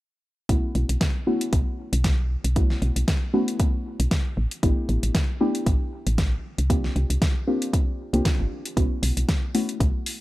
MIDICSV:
0, 0, Header, 1, 4, 480
1, 0, Start_track
1, 0, Key_signature, 2, "minor"
1, 0, Tempo, 517241
1, 458, Time_signature, 4, 2, 24, 8
1, 9472, End_track
2, 0, Start_track
2, 0, Title_t, "Synth stab"
2, 0, Program_c, 0, 62
2, 456, Note_on_c, 0, 57, 77
2, 456, Note_on_c, 0, 59, 72
2, 457, Note_on_c, 0, 61, 74
2, 457, Note_on_c, 0, 64, 70
2, 458, Note_on_c, 0, 66, 84
2, 1151, Note_off_c, 0, 57, 0
2, 1151, Note_off_c, 0, 59, 0
2, 1151, Note_off_c, 0, 61, 0
2, 1151, Note_off_c, 0, 64, 0
2, 1152, Note_off_c, 0, 66, 0
2, 1175, Note_on_c, 0, 57, 93
2, 1176, Note_on_c, 0, 59, 83
2, 1177, Note_on_c, 0, 61, 82
2, 1177, Note_on_c, 0, 64, 81
2, 1177, Note_on_c, 0, 66, 101
2, 2350, Note_off_c, 0, 57, 0
2, 2351, Note_off_c, 0, 59, 0
2, 2351, Note_off_c, 0, 61, 0
2, 2351, Note_off_c, 0, 64, 0
2, 2351, Note_off_c, 0, 66, 0
2, 2376, Note_on_c, 0, 57, 76
2, 2376, Note_on_c, 0, 59, 68
2, 2377, Note_on_c, 0, 61, 67
2, 2377, Note_on_c, 0, 64, 70
2, 2378, Note_on_c, 0, 66, 82
2, 3071, Note_off_c, 0, 57, 0
2, 3071, Note_off_c, 0, 59, 0
2, 3071, Note_off_c, 0, 61, 0
2, 3071, Note_off_c, 0, 64, 0
2, 3072, Note_off_c, 0, 66, 0
2, 3094, Note_on_c, 0, 57, 92
2, 3095, Note_on_c, 0, 59, 81
2, 3095, Note_on_c, 0, 61, 85
2, 3095, Note_on_c, 0, 64, 87
2, 3096, Note_on_c, 0, 66, 99
2, 4270, Note_off_c, 0, 57, 0
2, 4270, Note_off_c, 0, 59, 0
2, 4270, Note_off_c, 0, 61, 0
2, 4270, Note_off_c, 0, 64, 0
2, 4271, Note_off_c, 0, 66, 0
2, 4295, Note_on_c, 0, 57, 76
2, 4295, Note_on_c, 0, 59, 71
2, 4296, Note_on_c, 0, 62, 70
2, 4296, Note_on_c, 0, 64, 72
2, 4297, Note_on_c, 0, 67, 86
2, 4990, Note_off_c, 0, 57, 0
2, 4990, Note_off_c, 0, 59, 0
2, 4991, Note_off_c, 0, 62, 0
2, 4991, Note_off_c, 0, 64, 0
2, 4991, Note_off_c, 0, 67, 0
2, 5014, Note_on_c, 0, 57, 88
2, 5015, Note_on_c, 0, 59, 82
2, 5015, Note_on_c, 0, 62, 81
2, 5016, Note_on_c, 0, 64, 89
2, 5016, Note_on_c, 0, 67, 100
2, 5963, Note_off_c, 0, 57, 0
2, 5963, Note_off_c, 0, 59, 0
2, 5963, Note_off_c, 0, 62, 0
2, 5964, Note_off_c, 0, 64, 0
2, 5964, Note_off_c, 0, 67, 0
2, 6215, Note_on_c, 0, 58, 77
2, 6215, Note_on_c, 0, 60, 74
2, 6216, Note_on_c, 0, 62, 68
2, 6217, Note_on_c, 0, 65, 70
2, 6217, Note_on_c, 0, 67, 83
2, 6910, Note_off_c, 0, 58, 0
2, 6910, Note_off_c, 0, 60, 0
2, 6911, Note_off_c, 0, 62, 0
2, 6911, Note_off_c, 0, 65, 0
2, 6911, Note_off_c, 0, 67, 0
2, 6934, Note_on_c, 0, 58, 91
2, 6935, Note_on_c, 0, 60, 85
2, 6936, Note_on_c, 0, 62, 84
2, 6936, Note_on_c, 0, 65, 87
2, 6937, Note_on_c, 0, 67, 98
2, 7522, Note_off_c, 0, 58, 0
2, 7522, Note_off_c, 0, 60, 0
2, 7522, Note_off_c, 0, 62, 0
2, 7522, Note_off_c, 0, 65, 0
2, 7523, Note_off_c, 0, 67, 0
2, 7547, Note_on_c, 0, 58, 81
2, 7548, Note_on_c, 0, 60, 77
2, 7549, Note_on_c, 0, 62, 75
2, 7549, Note_on_c, 0, 65, 74
2, 7550, Note_on_c, 0, 67, 87
2, 8110, Note_off_c, 0, 58, 0
2, 8111, Note_off_c, 0, 60, 0
2, 8111, Note_off_c, 0, 62, 0
2, 8111, Note_off_c, 0, 65, 0
2, 8112, Note_off_c, 0, 67, 0
2, 8136, Note_on_c, 0, 57, 73
2, 8136, Note_on_c, 0, 59, 69
2, 8136, Note_on_c, 0, 61, 70
2, 8137, Note_on_c, 0, 64, 69
2, 8138, Note_on_c, 0, 66, 85
2, 8831, Note_off_c, 0, 57, 0
2, 8831, Note_off_c, 0, 59, 0
2, 8831, Note_off_c, 0, 61, 0
2, 8831, Note_off_c, 0, 64, 0
2, 8832, Note_off_c, 0, 66, 0
2, 8856, Note_on_c, 0, 57, 93
2, 8856, Note_on_c, 0, 59, 88
2, 8857, Note_on_c, 0, 61, 85
2, 8857, Note_on_c, 0, 64, 88
2, 8858, Note_on_c, 0, 66, 97
2, 9472, Note_off_c, 0, 57, 0
2, 9472, Note_off_c, 0, 59, 0
2, 9472, Note_off_c, 0, 61, 0
2, 9472, Note_off_c, 0, 64, 0
2, 9472, Note_off_c, 0, 66, 0
2, 9472, End_track
3, 0, Start_track
3, 0, Title_t, "FM bass"
3, 0, Program_c, 1, 39
3, 456, Note_on_c, 1, 35, 100
3, 542, Note_off_c, 1, 35, 0
3, 697, Note_on_c, 1, 35, 102
3, 782, Note_off_c, 1, 35, 0
3, 828, Note_on_c, 1, 35, 77
3, 898, Note_off_c, 1, 35, 0
3, 1417, Note_on_c, 1, 35, 96
3, 1502, Note_off_c, 1, 35, 0
3, 1788, Note_on_c, 1, 35, 98
3, 2193, Note_off_c, 1, 35, 0
3, 2268, Note_on_c, 1, 35, 77
3, 2555, Note_off_c, 1, 35, 0
3, 2615, Note_on_c, 1, 35, 101
3, 2701, Note_off_c, 1, 35, 0
3, 2748, Note_on_c, 1, 35, 78
3, 2818, Note_off_c, 1, 35, 0
3, 3709, Note_on_c, 1, 35, 89
3, 3778, Note_off_c, 1, 35, 0
3, 4057, Note_on_c, 1, 33, 94
3, 4142, Note_off_c, 1, 33, 0
3, 4297, Note_on_c, 1, 33, 93
3, 4382, Note_off_c, 1, 33, 0
3, 4536, Note_on_c, 1, 33, 101
3, 4622, Note_off_c, 1, 33, 0
3, 4669, Note_on_c, 1, 33, 77
3, 4738, Note_off_c, 1, 33, 0
3, 5256, Note_on_c, 1, 33, 98
3, 5342, Note_off_c, 1, 33, 0
3, 5630, Note_on_c, 1, 33, 96
3, 5916, Note_off_c, 1, 33, 0
3, 6109, Note_on_c, 1, 36, 81
3, 6396, Note_off_c, 1, 36, 0
3, 6457, Note_on_c, 1, 36, 99
3, 6542, Note_off_c, 1, 36, 0
3, 6588, Note_on_c, 1, 36, 79
3, 6658, Note_off_c, 1, 36, 0
3, 7548, Note_on_c, 1, 36, 92
3, 7618, Note_off_c, 1, 36, 0
3, 7789, Note_on_c, 1, 31, 79
3, 7858, Note_off_c, 1, 31, 0
3, 8137, Note_on_c, 1, 35, 92
3, 8222, Note_off_c, 1, 35, 0
3, 8376, Note_on_c, 1, 35, 104
3, 8462, Note_off_c, 1, 35, 0
3, 8509, Note_on_c, 1, 35, 74
3, 8579, Note_off_c, 1, 35, 0
3, 9098, Note_on_c, 1, 35, 97
3, 9182, Note_off_c, 1, 35, 0
3, 9472, End_track
4, 0, Start_track
4, 0, Title_t, "Drums"
4, 456, Note_on_c, 9, 42, 62
4, 457, Note_on_c, 9, 36, 114
4, 549, Note_off_c, 9, 42, 0
4, 550, Note_off_c, 9, 36, 0
4, 697, Note_on_c, 9, 42, 36
4, 789, Note_off_c, 9, 42, 0
4, 829, Note_on_c, 9, 42, 55
4, 922, Note_off_c, 9, 42, 0
4, 936, Note_on_c, 9, 38, 122
4, 937, Note_on_c, 9, 36, 108
4, 937, Note_on_c, 9, 42, 66
4, 1029, Note_off_c, 9, 38, 0
4, 1030, Note_off_c, 9, 36, 0
4, 1030, Note_off_c, 9, 42, 0
4, 1309, Note_on_c, 9, 42, 53
4, 1402, Note_off_c, 9, 42, 0
4, 1417, Note_on_c, 9, 36, 107
4, 1417, Note_on_c, 9, 42, 67
4, 1509, Note_off_c, 9, 42, 0
4, 1510, Note_off_c, 9, 36, 0
4, 1789, Note_on_c, 9, 42, 53
4, 1882, Note_off_c, 9, 42, 0
4, 1896, Note_on_c, 9, 38, 111
4, 1897, Note_on_c, 9, 36, 114
4, 1897, Note_on_c, 9, 42, 66
4, 1989, Note_off_c, 9, 38, 0
4, 1989, Note_off_c, 9, 42, 0
4, 1990, Note_off_c, 9, 36, 0
4, 2269, Note_on_c, 9, 42, 52
4, 2361, Note_off_c, 9, 42, 0
4, 2377, Note_on_c, 9, 36, 121
4, 2377, Note_on_c, 9, 42, 60
4, 2470, Note_off_c, 9, 36, 0
4, 2470, Note_off_c, 9, 42, 0
4, 2508, Note_on_c, 9, 38, 37
4, 2601, Note_off_c, 9, 38, 0
4, 2617, Note_on_c, 9, 42, 38
4, 2710, Note_off_c, 9, 42, 0
4, 2749, Note_on_c, 9, 42, 52
4, 2842, Note_off_c, 9, 42, 0
4, 2856, Note_on_c, 9, 38, 124
4, 2857, Note_on_c, 9, 36, 120
4, 2857, Note_on_c, 9, 42, 65
4, 2949, Note_off_c, 9, 38, 0
4, 2950, Note_off_c, 9, 36, 0
4, 2950, Note_off_c, 9, 42, 0
4, 3229, Note_on_c, 9, 42, 50
4, 3322, Note_off_c, 9, 42, 0
4, 3336, Note_on_c, 9, 42, 61
4, 3337, Note_on_c, 9, 36, 117
4, 3429, Note_off_c, 9, 42, 0
4, 3430, Note_off_c, 9, 36, 0
4, 3709, Note_on_c, 9, 42, 53
4, 3802, Note_off_c, 9, 42, 0
4, 3816, Note_on_c, 9, 38, 117
4, 3817, Note_on_c, 9, 36, 112
4, 3817, Note_on_c, 9, 42, 64
4, 3909, Note_off_c, 9, 38, 0
4, 3910, Note_off_c, 9, 36, 0
4, 3910, Note_off_c, 9, 42, 0
4, 4189, Note_on_c, 9, 42, 47
4, 4282, Note_off_c, 9, 42, 0
4, 4297, Note_on_c, 9, 36, 121
4, 4297, Note_on_c, 9, 42, 61
4, 4389, Note_off_c, 9, 36, 0
4, 4390, Note_off_c, 9, 42, 0
4, 4537, Note_on_c, 9, 42, 33
4, 4630, Note_off_c, 9, 42, 0
4, 4669, Note_on_c, 9, 42, 50
4, 4762, Note_off_c, 9, 42, 0
4, 4776, Note_on_c, 9, 38, 117
4, 4777, Note_on_c, 9, 36, 120
4, 4777, Note_on_c, 9, 42, 64
4, 4868, Note_off_c, 9, 38, 0
4, 4869, Note_off_c, 9, 36, 0
4, 4869, Note_off_c, 9, 42, 0
4, 5149, Note_on_c, 9, 42, 47
4, 5242, Note_off_c, 9, 42, 0
4, 5256, Note_on_c, 9, 36, 121
4, 5257, Note_on_c, 9, 42, 59
4, 5349, Note_off_c, 9, 36, 0
4, 5349, Note_off_c, 9, 42, 0
4, 5629, Note_on_c, 9, 42, 49
4, 5722, Note_off_c, 9, 42, 0
4, 5736, Note_on_c, 9, 38, 112
4, 5737, Note_on_c, 9, 36, 116
4, 5737, Note_on_c, 9, 42, 61
4, 5829, Note_off_c, 9, 38, 0
4, 5830, Note_off_c, 9, 36, 0
4, 5830, Note_off_c, 9, 42, 0
4, 6111, Note_on_c, 9, 42, 48
4, 6203, Note_off_c, 9, 42, 0
4, 6217, Note_on_c, 9, 36, 113
4, 6219, Note_on_c, 9, 42, 58
4, 6309, Note_off_c, 9, 36, 0
4, 6311, Note_off_c, 9, 42, 0
4, 6350, Note_on_c, 9, 38, 34
4, 6443, Note_off_c, 9, 38, 0
4, 6459, Note_on_c, 9, 42, 36
4, 6551, Note_off_c, 9, 42, 0
4, 6591, Note_on_c, 9, 42, 48
4, 6684, Note_off_c, 9, 42, 0
4, 6697, Note_on_c, 9, 36, 121
4, 6698, Note_on_c, 9, 38, 110
4, 6699, Note_on_c, 9, 42, 60
4, 6790, Note_off_c, 9, 36, 0
4, 6790, Note_off_c, 9, 38, 0
4, 6791, Note_off_c, 9, 42, 0
4, 7070, Note_on_c, 9, 42, 50
4, 7163, Note_off_c, 9, 42, 0
4, 7177, Note_on_c, 9, 36, 113
4, 7179, Note_on_c, 9, 42, 60
4, 7270, Note_off_c, 9, 36, 0
4, 7271, Note_off_c, 9, 42, 0
4, 7551, Note_on_c, 9, 42, 47
4, 7644, Note_off_c, 9, 42, 0
4, 7657, Note_on_c, 9, 36, 122
4, 7659, Note_on_c, 9, 38, 115
4, 7659, Note_on_c, 9, 42, 60
4, 7750, Note_off_c, 9, 36, 0
4, 7751, Note_off_c, 9, 38, 0
4, 7752, Note_off_c, 9, 42, 0
4, 8032, Note_on_c, 9, 42, 47
4, 8124, Note_off_c, 9, 42, 0
4, 8137, Note_on_c, 9, 36, 112
4, 8140, Note_on_c, 9, 42, 60
4, 8230, Note_off_c, 9, 36, 0
4, 8232, Note_off_c, 9, 42, 0
4, 8379, Note_on_c, 9, 46, 108
4, 8472, Note_off_c, 9, 46, 0
4, 8510, Note_on_c, 9, 42, 49
4, 8603, Note_off_c, 9, 42, 0
4, 8617, Note_on_c, 9, 38, 107
4, 8618, Note_on_c, 9, 36, 111
4, 8618, Note_on_c, 9, 42, 62
4, 8710, Note_off_c, 9, 36, 0
4, 8710, Note_off_c, 9, 38, 0
4, 8711, Note_off_c, 9, 42, 0
4, 8859, Note_on_c, 9, 46, 91
4, 8952, Note_off_c, 9, 46, 0
4, 8991, Note_on_c, 9, 42, 49
4, 9084, Note_off_c, 9, 42, 0
4, 9098, Note_on_c, 9, 36, 111
4, 9100, Note_on_c, 9, 42, 58
4, 9191, Note_off_c, 9, 36, 0
4, 9193, Note_off_c, 9, 42, 0
4, 9339, Note_on_c, 9, 46, 102
4, 9432, Note_off_c, 9, 46, 0
4, 9472, End_track
0, 0, End_of_file